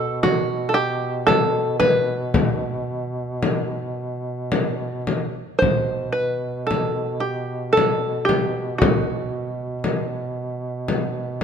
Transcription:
Already playing: duduk B2, five-string banjo A4
0.23 five-string banjo F#4, frame drum
0.69 five-string banjo A4
0.74 five-string banjo G4
1.27 five-string banjo A4, frame drum
1.80 five-string banjo B4, frame drum
2.34 frame drum
3.43 frame drum
4.52 frame drum
5.07 frame drum
5.59 duduk B2, five-string banjo C5, frame drum
6.12 five-string banjo B4
6.67 five-string banjo A4
6.71 frame drum
7.20 five-string banjo G4
7.73 five-string banjo A4
7.77 frame drum
8.25 five-string banjo G4
8.29 frame drum
8.78 five-string banjo F#4, frame drum
9.84 frame drum
10.88 frame drum

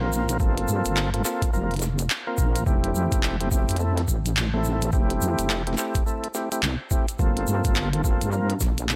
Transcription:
Already playing: wobble bass A#1
0.01 tonewheel organ A#3 C4 F4 A#4
0.13 shaker
0.29 closed hi-hat, shaker
0.40 wobble bass G1, tonewheel organ A#3 C4 F4 A4, kick, shaker
0.58 closed hi-hat
0.68 wobble bass G2, shaker
0.85 wobble bass G1, closed hi-hat, shaker
0.96 clap, shaker
1.14 tonewheel organ A#3 C4 F4 A4, closed hi-hat
1.25 tonewheel organ A#3 C4 F4 A4, clap, snare, shaker
1.42 kick, closed hi-hat, shaker
1.53 wobble bass F1, tonewheel organ A#3 C4 F4 A#4, shaker
1.71 closed hi-hat
1.74 closed hi-hat
1.76 closed hi-hat
1.79 snare, closed hi-hat, shaker
1.99 closed hi-hat, shaker
2.10 clap, shaker
2.27 tonewheel organ A#3 C4 F4 A#4
2.38 wobble bass A#1, kick, shaker
2.56 closed hi-hat, shaker
2.66 wobble bass F1, tonewheel organ A3 C4 E4 G4, kick, shaker
2.84 closed hi-hat
2.95 wobble bass F2, shaker
3.12 wobble bass F1, kick, closed hi-hat, shaker
3.23 clap, shaker
3.40 tonewheel organ A3 C4 E4 G4, closed hi-hat
3.51 wobble bass F1, tonewheel organ A3 C4 E4 G4, kick, shaker
3.69 wobble bass F2, closed hi-hat, shaker
3.71 closed hi-hat
3.76 tonewheel organ A3 C4 E4 A4, closed hi-hat, shaker
3.98 snare, closed hi-hat
4.08 wobble bass A1, kick, shaker
4.26 closed hi-hat, shaker
4.37 clap, shaker
4.54 tonewheel organ A3 C4 E4 A4
4.64 shaker
4.82 closed hi-hat, shaker
4.92 wobble bass F1, tonewheel organ A3 C4 E4 G4, kick, shaker
5.10 closed hi-hat
5.21 wobble bass F2, shaker
5.39 wobble bass F1, closed hi-hat, shaker
5.50 clap, shaker
5.67 tonewheel organ A3 C4 E4 G4, closed hi-hat
5.73 snare
5.77 tonewheel organ A3 C4 E4 G4, clap, shaker
5.95 kick, closed hi-hat, shaker
6.06 tonewheel organ A3 C4 E4 A4, shaker
6.24 closed hi-hat
6.34 tonewheel organ A3 C4 E4 G4, snare, shaker
6.52 tonewheel organ A3 C4 E4 G4, closed hi-hat, shaker
6.63 wobble bass C2, clap, shaker
6.91 tonewheel organ A3 C4 E4 G4, kick, shaker
7.08 closed hi-hat, shaker
7.19 wobble bass G1, tonewheel organ A#3 C4 F4 A4, kick, shaker
7.37 closed hi-hat
7.47 wobble bass G2, shaker
7.64 wobble bass G1, kick, closed hi-hat, shaker
7.75 clap, shaker
7.93 tonewheel organ A#3 C4 F4 A4, closed hi-hat
8.04 wobble bass G1, tonewheel organ A#3 C4 F4 A4, kick, shaker
8.21 wobble bass G2, closed hi-hat, shaker
8.32 tonewheel organ A#3 C4 F4 A#4, shaker
8.50 closed hi-hat
8.60 wobble bass A#1, kick, snare, shaker
8.78 closed hi-hat, shaker
8.89 clap, shaker

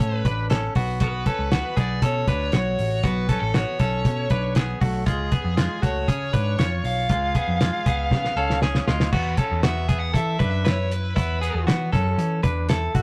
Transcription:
Already playing: clean electric guitar C#4 A4, lead electric guitar C#5
0.00 picked electric bass A2, closed hi-hat
0.16 lead electric guitar B4
0.25 picked electric bass A1, clean electric guitar D4 B4, kick, closed hi-hat
0.50 clean electric guitar C#4 A4, snare, closed hi-hat
0.75 picked electric bass B1, clean electric guitar B3 F#4, kick, open hi-hat
1.00 clean electric guitar B3 F#4, lead electric guitar B4, kick, closed hi-hat
1.26 clean electric guitar C#4 A4, kick, closed hi-hat
1.39 picked electric bass C#2
1.52 clean electric guitar B3 F#4, snare, closed hi-hat
1.77 picked electric bass B1, clean electric guitar B3 G#4, lead electric guitar D5, kick, closed hi-hat
2.02 picked electric bass B2, clean electric guitar C#4 A4, lead electric guitar C#5, kick, closed hi-hat
2.28 picked electric bass D2, clean electric guitar D4 B4, kick, closed hi-hat
2.52 picked electric bass B1, clean electric guitar F#4 C#5, lead electric guitar C#5, snare, closed hi-hat
2.79 picked electric bass A1, open hi-hat
3.03 picked electric bass B1, clean electric guitar B3 F#4, lead electric guitar B4, kick, closed hi-hat
3.29 clean electric guitar C#4 A4, kick, closed hi-hat
3.39 picked electric bass A1, lead electric guitar A4
3.54 clean electric guitar B3 F#4, lead electric guitar C#5, snare, closed hi-hat
3.79 picked electric bass B1, clean electric guitar C#4 A4, kick, closed hi-hat
4.05 picked electric bass B2, kick, closed hi-hat
4.30 picked electric bass B1, clean electric guitar D4 B4, kick, closed hi-hat
4.55 clean electric guitar B3 G#4, snare, closed hi-hat
4.81 picked electric bass B1, clean electric guitar A3 F#4, kick, open hi-hat
5.06 picked electric bass C#2, clean electric guitar G#3 F4, lead electric guitar G#4, kick, closed hi-hat
5.32 clean electric guitar B3 G#4, kick, closed hi-hat
5.44 picked electric bass F2
5.57 clean electric guitar G#3 F4, snare, closed hi-hat
5.82 picked electric bass C#2, clean electric guitar A3 F#4, lead electric guitar C#5, kick, closed hi-hat
6.08 picked electric bass C#3, clean electric guitar C#4 G#4, kick, closed hi-hat
6.33 picked electric bass G#2, clean electric guitar D4 B4, kick, closed hi-hat
6.58 picked electric bass F2, clean electric guitar F4 C#5, snare, closed hi-hat
6.84 picked electric bass B1, lead electric guitar F5, open hi-hat
7.09 picked electric bass C#2, clean electric guitar G#3 F4, kick, closed hi-hat
7.35 clean electric guitar B3 G#4, kick, closed hi-hat
7.48 picked electric bass F2
7.61 clean electric guitar G#3 F4, snare, closed hi-hat
7.86 picked electric bass C#2, clean electric guitar B3 G#4, kick, closed hi-hat
8.11 picked electric bass C#3, kick, snare
8.25 snare
8.36 picked electric bass C#2, clean electric guitar C#4 A4
8.50 snare
8.62 clean electric guitar C#4 G#4, snare
8.75 snare
8.88 picked electric bass D2, clean electric guitar G#3 F4, snare
9.00 snare
9.12 picked electric bass E2, clean electric guitar B3 F#4, kick, crash
9.37 clean electric guitar C#4 A4, kick, closed hi-hat
9.52 picked electric bass E2
9.63 clean electric guitar B3 F#4, lead electric guitar E5, snare, closed hi-hat
9.89 clean electric guitar B3 G#4, kick, closed hi-hat
9.99 lead electric guitar F#5
10.14 picked electric bass E3, clean electric guitar E4 A4, lead electric guitar E5, kick, closed hi-hat
10.39 picked electric bass F#2, clean electric guitar D4 B4, kick, closed hi-hat
10.50 lead electric guitar E5
10.65 clean electric guitar E4 B4, lead electric guitar C#5, snare, closed hi-hat
10.91 lead electric guitar B4, closed hi-hat
11.16 picked electric bass E2, clean electric guitar B3 E4, kick, closed hi-hat
11.41 clean electric guitar B3 G#4, closed hi-hat
11.54 picked electric bass E2
11.67 picked electric bass E3, clean electric guitar B3 F#4, snare, closed hi-hat
11.92 picked electric bass F#2, clean electric guitar C#4 A4, kick, closed hi-hat
12.18 picked electric bass E3, closed hi-hat
12.43 picked electric bass E2, clean electric guitar D4 B4, kick, closed hi-hat
12.69 clean electric guitar E4 A4, snare, closed hi-hat
12.95 picked electric bass G#1, clean electric guitar A3 F#4, kick, closed hi-hat

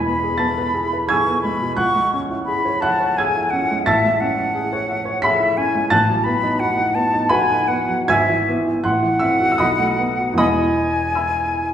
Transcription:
Already playing: grand piano E1 E2 G#3 B5 G#6 B6
0.05 grand piano B3, flute B5
0.24 grand piano G#4
0.38 grand piano B3 A5 A6
0.58 grand piano B4
0.74 grand piano G#4
0.93 grand piano B4
1.09 grand piano G#4 G#5 E6 G#6, flute C#6
1.27 grand piano B3
1.43 grand piano G#3, flute B5
1.61 grand piano B2
1.76 grand piano C#2 F#5 F#6, flute C#6
1.95 grand piano G#3
2.14 grand piano C#4
2.30 grand piano E4
2.46 grand piano G#4, flute B5
2.65 grand piano C#5
2.81 grand piano E5 F#5 F#6, flute A5
3.00 grand piano C#5
3.17 grand piano G#4 G#5 E6 G#6, flute G#5
3.37 grand piano E4
3.50 grand piano C#4, flute F#5
3.71 grand piano G#3
3.84 grand piano A1 A5 E6 A6, flute E5
4.05 grand piano G#3
4.20 grand piano C#4, flute F#5
4.38 grand piano E4
4.55 grand piano G#4
4.73 grand piano C#5
4.89 grand piano E5
5.05 grand piano C#5
5.22 grand piano G#4 B5 B6, flute E5
5.40 grand piano E4
5.57 grand piano C#4, flute G#5
5.75 grand piano G#3
5.89 grand piano A1 A5 F#6 A6, flute A5
6.09 grand piano F#3
6.24 grand piano B3, flute B5
6.43 grand piano D#4
6.60 grand piano F#4, flute F#5
6.77 grand piano D#4
6.95 grand piano B3, flute A5
7.14 grand piano D#4
7.29 grand piano F#4 B4 F#5 B5, flute G#5
7.49 grand piano D#4
7.68 grand piano B3, flute F#5
7.89 grand piano F#3
8.08 grand piano G#1 G#5 E6 G#6, flute E5
8.29 grand piano E3
8.48 grand piano B3
8.67 grand piano E4
8.83 grand piano A1 F#5 C6 F#6, flute F#5
9.02 grand piano E3
9.19 grand piano C4 E5 E6
9.40 grand piano F#4
9.52 grand piano E6
9.58 grand piano B1 D#5 B5 D#6
9.79 grand piano A3
9.99 grand piano B3
10.19 grand piano F#4
10.33 grand piano E1 E2 G#3 B3 E4
10.38 grand piano D#5 B5 D#6, flute G#5
11.15 grand piano E5 B5 E6

